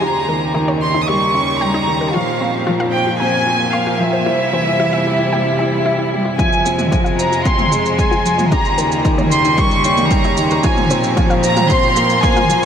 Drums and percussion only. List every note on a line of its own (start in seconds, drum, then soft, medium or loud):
6.39 kick medium
6.39 shaker soft
6.53 shaker soft
6.66 shaker medium
6.79 mid tom medium
6.79 shaker soft
6.92 kick medium
6.92 shaker soft
7.06 shaker soft
7.19 shaker medium
7.33 shaker soft
7.45 kick medium
7.45 shaker soft
7.59 mid tom medium
7.59 shaker soft
7.72 shaker medium
7.86 shaker soft
7.99 kick medium
7.99 shaker soft
8.12 shaker soft
8.26 shaker medium
8.39 mid tom medium
8.39 shaker soft
8.52 kick loud
8.52 shaker soft
8.65 shaker soft
8.78 shaker medium
8.92 shaker soft
9.05 kick loud
9.05 shaker soft
9.18 mid tom medium
9.18 shaker soft
9.32 shaker medium
9.45 shaker soft
9.58 kick medium
9.58 shaker soft
9.71 shaker soft
9.84 shaker medium
9.97 mid tom medium
9.97 shaker soft
10.11 kick loud
10.11 shaker soft
10.24 shaker soft
10.37 shaker medium
10.51 shaker soft
10.64 kick loud
10.64 shaker soft
10.77 mid tom medium
10.77 shaker soft
10.90 shaker medium
11.04 shaker soft
11.17 kick loud
11.17 shaker soft
11.30 shaker soft
11.43 shaker medium
11.57 mid tom medium
11.57 shaker soft
11.70 kick loud
11.70 shaker soft
11.83 shaker soft
11.96 shaker medium
12.10 shaker soft
12.23 kick loud
12.23 shaker soft
12.36 mid tom medium
12.36 shaker soft
12.50 shaker medium